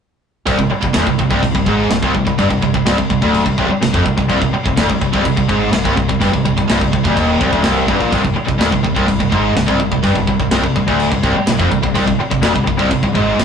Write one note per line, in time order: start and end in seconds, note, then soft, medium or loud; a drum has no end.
0.46 0.58 C1 medium
0.46 0.58 C2 loud
0.46 kick loud
0.46 crash medium
0.59 0.70 C1 medium
0.59 0.70 C2 medium
0.59 kick medium
0.70 muted upright bass stroke soft
0.70 muted distorted electric guitar stroke medium
0.83 0.94 C1 medium
0.83 0.95 C2 medium
0.83 kick medium
0.93 1.06 D1 loud
0.93 1.05 D2 loud
0.93 snare loud
0.93 crash medium
0.97 1.07 D2 loud
1.07 1.18 C1 medium
1.07 1.19 C2 medium
1.07 kick medium
1.19 1.30 C1 medium
1.19 1.30 C2 medium
1.19 kick medium
1.31 1.42 C1 loud
1.31 1.41 C2 loud
1.31 kick medium
1.42 1.53 C1 medium
1.42 1.54 C2 medium
1.42 kick medium
1.42 crash medium
1.55 1.66 C1 medium
1.55 1.67 C2 medium
1.55 kick medium
1.66 1.89 G#1 medium
1.66 1.90 G#2 loud
1.66 kick medium
1.91 2.01 C1 medium
1.91 2.03 C2 medium
1.91 snare loud
1.91 crash medium
2.02 2.13 C1 medium
2.02 2.14 C2 loud
2.02 kick loud
2.15 2.26 C1 medium
2.15 2.25 C2 medium
2.15 kick medium
2.26 2.37 C1 medium
2.26 2.38 C2 medium
2.26 kick medium
2.39 2.49 G1 medium
2.39 2.50 G2 loud
2.39 kick medium
2.39 crash medium
2.50 2.61 C1 medium
2.50 2.62 C2 medium
2.50 kick medium
2.62 2.73 C1 medium
2.62 2.74 C2 medium
2.62 kick medium
2.74 2.85 C1 medium
2.74 2.85 C2 medium
2.74 kick medium
2.86 2.97 C1 medium
2.86 2.97 C2 loud
2.86 snare loud
2.86 crash medium
2.98 3.09 C1 medium
2.98 3.09 C2 medium
2.98 kick medium
3.10 3.21 C1 medium
3.10 3.22 C2 medium
3.10 kick medium
3.22 3.45 D1 medium
3.22 3.45 D2 loud
3.22 kick medium
3.34 crash medium
3.46 3.57 C1 medium
3.46 3.58 C2 medium
3.46 kick medium
3.58 3.69 C1 loud
3.58 3.70 C2 loud
3.58 kick medium
3.71 muted distorted electric guitar stroke medium
3.71 muted upright bass stroke soft
3.81 3.93 C1 medium
3.81 3.93 C2 medium
3.81 snare loud
3.81 crash medium
3.94 4.05 F1 medium
3.94 4.05 F2 loud
3.94 kick loud
4.05 4.17 C1 medium
4.05 4.16 C2 medium
4.05 kick medium
4.17 4.29 C1 medium
4.17 4.27 C2 medium
4.17 kick medium
4.28 4.41 C1 medium
4.28 4.40 C2 loud
4.28 kick medium
4.28 crash medium
4.41 4.52 C1 medium
4.41 4.52 C2 medium
4.41 kick medium
4.53 muted distorted electric guitar stroke medium
4.53 muted upright bass stroke soft
4.66 4.77 C1 medium
4.66 4.78 C2 medium
4.66 kick medium
4.77 4.89 D1 loud
4.77 4.89 D2 loud
4.77 snare loud
4.77 crash medium
4.90 5.01 C1 medium
4.90 5.00 C2 medium
4.90 kick medium
5.01 5.12 C1 medium
5.01 5.13 C2 medium
5.01 kick medium
5.13 5.24 C1 medium
5.13 5.24 C2 loud
5.13 kick medium
5.25 5.37 C1 medium
5.25 5.35 C2 medium
5.25 kick loud
5.25 crash medium
5.36 5.48 C1 medium
5.36 5.48 C2 medium
5.36 kick medium
5.48 5.71 G#1 loud
5.48 5.72 G#2 loud
5.48 kick medium
5.72 5.84 C1 medium
5.72 5.83 C2 medium
5.72 snare loud
5.72 crash medium
5.85 5.96 C1 medium
5.85 5.95 C2 loud
5.85 kick loud
5.97 6.08 C1 medium
5.97 6.08 C2 medium
5.97 kick medium
6.09 6.20 C1 medium
6.09 6.21 C2 medium
6.09 kick medium
6.21 6.32 G1 medium
6.21 6.32 G2 loud
6.21 kick medium
6.21 crash medium
6.33 6.44 C1 medium
6.33 6.44 C2 medium
6.33 kick medium
6.45 6.57 C1 medium
6.45 6.57 C2 medium
6.45 kick medium
6.58 6.69 C1 medium
6.58 6.69 C2 medium
6.58 kick medium
6.70 6.80 C1 loud
6.70 6.81 C2 loud
6.70 snare loud
6.70 crash medium
6.81 6.92 C1 medium
6.81 6.93 C2 medium
6.81 kick medium
6.93 7.04 C1 medium
6.93 7.06 C2 medium
6.93 kick medium
7.05 7.16 D1 medium
7.05 7.17 D2 loud
7.05 kick medium
7.17 7.39 D#1 loud
7.17 7.40 D#2 loud
7.17 kick loud
7.17 crash medium
7.40 7.51 C1 medium
7.40 7.52 C2 loud
7.40 kick loud
7.53 7.64 D1 loud
7.53 7.63 D2 loud
7.53 kick medium
7.64 7.88 C1 loud
7.64 7.87 C2 loud
7.64 snare loud
7.64 crash medium
7.88 8.00 G1 medium
7.88 8.00 G2 loud
7.88 kick loud
8.00 8.11 A#1 loud
8.00 8.11 A#2 loud
8.00 kick medium
8.12 8.23 C1 medium
8.12 8.22 C2 loud
8.12 kick medium
8.12 crash medium
8.24 8.35 C1 medium
8.24 8.35 C2 medium
8.24 kick medium
8.36 muted distorted electric guitar stroke medium
8.36 muted upright bass stroke soft
8.47 8.59 C1 medium
8.47 8.58 C2 medium
8.47 kick medium
8.59 8.71 D1 medium
8.59 8.71 D2 loud
8.59 snare loud
8.59 crash medium
8.71 8.83 C1 medium
8.71 8.82 C2 medium
8.71 kick medium
8.83 8.96 C1 medium
8.83 8.95 C2 medium
8.83 kick medium
8.96 9.07 C1 medium
8.96 9.06 C2 loud
8.96 kick medium
9.07 9.19 C1 medium
9.07 9.19 C2 medium
9.07 kick loud
9.07 crash medium
9.20 9.31 C1 medium
9.20 9.32 C2 medium
9.20 kick medium
9.32 9.54 G#1 medium
9.32 9.55 G#2 loud
9.32 kick medium
9.56 9.67 C1 medium
9.56 9.66 C2 medium
9.56 snare loud
9.56 crash medium
9.67 9.79 C1 medium
9.67 9.79 C2 loud
9.67 kick loud
9.80 9.91 C1 medium
9.80 9.91 C2 medium
9.80 kick medium
9.91 10.02 C1 medium
9.91 10.03 C2 medium
9.91 kick medium
10.03 10.15 G1 medium
10.03 10.15 G2 loud
10.03 kick medium
10.03 crash medium
10.15 10.27 C1 medium
10.15 10.27 C2 medium
10.15 kick medium
10.27 10.39 C1 medium
10.27 10.39 C2 medium
10.27 kick medium
10.39 10.50 C1 medium
10.39 10.50 C2 medium
10.39 kick medium
10.51 10.62 C1 loud
10.51 10.63 C2 loud
10.51 snare loud
10.51 crash medium
10.64 10.75 C1 medium
10.64 10.75 C2 medium
10.64 kick medium
10.76 10.87 C1 medium
10.76 10.86 C2 medium
10.76 kick medium
10.87 11.10 D1 loud
10.87 11.10 D2 loud
10.87 kick medium
11.00 crash medium
11.11 11.22 C1 medium
11.11 11.22 C2 medium
11.11 kick medium
11.23 11.34 C1 loud
11.23 11.35 C2 loud
11.23 kick medium
11.35 muted upright bass stroke soft
11.35 muted distorted electric guitar stroke medium
11.47 11.58 C1 medium
11.47 11.60 C2 medium
11.47 snare loud
11.47 crash medium
11.59 11.71 F1 medium
11.59 11.71 F2 loud
11.59 kick loud
11.72 11.83 C1 medium
11.72 11.82 C2 medium
11.72 kick medium
11.83 11.95 C1 medium
11.83 11.93 C2 medium
11.83 kick medium
11.94 12.07 C1 medium
11.94 12.05 C2 loud
11.94 kick medium
11.94 crash medium
12.06 12.18 C1 medium
12.06 12.18 C2 medium
12.06 kick medium
12.18 muted upright bass stroke soft
12.18 muted distorted electric guitar stroke medium
12.31 12.41 C1 medium
12.31 12.41 C2 medium
12.31 kick medium
12.42 12.54 D1 loud
12.42 12.54 D2 loud
12.42 snare loud
12.42 crash medium
12.54 12.66 C1 medium
12.54 12.63 C2 medium
12.54 kick medium
12.64 12.79 C1 medium
12.64 12.76 C2 medium
12.64 kick medium
12.77 12.90 C1 medium
12.77 12.89 C2 loud
12.77 kick medium
12.90 13.02 C1 medium
12.90 13.02 C2 medium
12.90 kick loud
12.90 crash medium
13.03 13.14 C1 medium
13.03 13.14 C2 medium
13.03 kick medium
13.14 13.38 G#1 medium
13.14 13.38 G#2 loud
13.14 kick medium
13.40 13.45 C1 medium
13.40 13.45 C2 medium
13.40 snare loud
13.40 crash medium